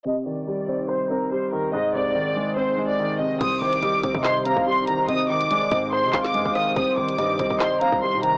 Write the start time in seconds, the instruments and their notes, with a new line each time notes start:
0.05 analog synth pad C3 G3 D#4 C5, grand piano C3, violin section D#5
0.26 grand piano D#3, violin section D5
0.47 grand piano G3
0.68 grand piano C4
0.89 grand piano C5, violin section C5
1.10 grand piano C4, violin section A#4
1.31 grand piano G3, violin section C5
1.52 grand piano D#3, violin section A#4
1.73 grand piano G#2, analog synth pad G#3 D#4, violin section D#5
1.94 grand piano C3, violin section D5
2.15 grand piano D#3
2.36 grand piano G#3
2.56 grand piano C4, violin section C5
2.78 grand piano G#3
2.89 violin section D5
2.99 grand piano D#3
3.19 grand piano C3, violin section D#5
3.41 808-style bass C2, analog synth pad C3 G3 D#4 C5, grand piano C3, soft synth lead C5, violin section D#6, kick, closed hi-hat, crash
3.62 808-style bass C2, grand piano D#3, violin section D6
3.73 closed hi-hat
3.83 808-style bass C2, grand piano G3, soft synth lead D#5, closed hi-hat
4.04 808-style bass C2, grand piano C4, soft synth lead D#5, kick, closed hi-hat
4.15 808-style bass C3, kick
4.24 grand piano C5, violin section C6, snare, clap
4.45 grand piano C4, soft synth lead F5, violin section A#5, closed hi-hat
4.57 808-style bass C2, kick
4.67 grand piano G3, violin section C6
4.87 grand piano D#3, violin section A#5, closed hi-hat
5.08 808-style bass G#1, grand piano C3, analog synth pad G#3, soft synth lead D#5, violin section D#6, closed hi-hat
5.29 grand piano D#3, violin section D6
5.41 closed hi-hat
5.50 grand piano G#3, soft synth lead D5, closed hi-hat
5.71 808-style bass G#2, grand piano C4, soft synth lead D#5, kick, closed hi-hat
5.93 grand piano C5, violin section C6
6.04 808-style bass C3
6.13 808-style bass G#1, grand piano C4, soft synth lead F5, kick, snare, clap, closed hi-hat
6.25 violin section D6, snare
6.34 808-style bass G#2, grand piano G#3, closed hi-hat
6.46 808-style bass G#1, kick
6.55 grand piano D#3, violin section D#6, cross-stick, open hi-hat
6.76 808-style bass C2, grand piano C3, analog synth pad G3 D#4, soft synth lead C5, violin section D#6, kick, closed hi-hat
6.97 808-style bass C2, grand piano D#3, violin section D6
7.08 closed hi-hat
7.18 808-style bass G2, grand piano G3, soft synth lead D#5, closed hi-hat
7.39 808-style bass C2, grand piano C4, soft synth lead D#5, kick, closed hi-hat
7.50 808-style bass C2, kick
7.60 grand piano C5, violin section C6, snare, clap
7.81 grand piano C4, soft synth lead F5, violin section A#5, closed hi-hat
7.92 808-style bass C2, kick
8.02 grand piano G3, violin section C6
8.13 808-style bass C3
8.23 grand piano D#3, violin section A#5, closed hi-hat